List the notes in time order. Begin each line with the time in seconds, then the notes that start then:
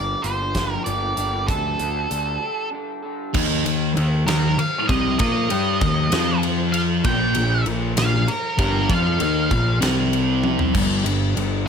Already playing: G1 G2 D3 F3 A#3 D4 G4 D5
0.22 G1 F3 A#3 D4 G4 C5, closed hi-hat
0.54 F3 A#3 D4 G4, kick, snare, closed hi-hat
0.72 A#4
0.84 G1 F3 A#3 D4 G4 D5, closed hi-hat
1.16 G1 F3 A#3 D4 G4, closed hi-hat
1.47 D2 D3 G3 D4 A4, kick, closed hi-hat
1.78 D2 G3 D4 A4, closed hi-hat
2.10 D2 D3 G3 D4 A4, closed hi-hat
2.40 G3 D4 A4
2.71 D3 G3 D4 A4
3.02 G3 D4 A4
3.34 D#2 D#3 D#4, kick, crash
3.65 D#2 D#3, ride
3.97 D#2 D#3, ride
4.27 D#2 D#3 A#4, snare, ride
4.58 F5, ride
4.88 C2 C3 C4 D#5, kick, ride
5.19 A#2 A#3 A#4 D#5, kick, ride
5.50 G2 G3 G4, ride
5.81 D#2 D#3, kick, ride
6.12 F2 F3 F4, snare, ride
6.43 ride
6.72 F5, ride
7.04 A#1 A#2 A#3 G5, kick, ride
7.35 A#1 A#2, ride
7.66 A#1 A#2, ride
7.97 A#1 A#2 F5, snare, ride
8.28 A#4, ride
8.58 G1 G2 G3 A#4, kick, ride
8.89 F2 F3 F4 F5, kick, ride
9.19 D#2 D#3 D#4, ride
9.51 A#1 A#2, kick, ride
9.81 C2 C3 C4, snare, ride
10.13 ride
10.44 high tom
10.59 floor tom
10.74 G1 G2 G3, kick, crash
11.05 G1 G2, ride
11.37 G1 G2, ride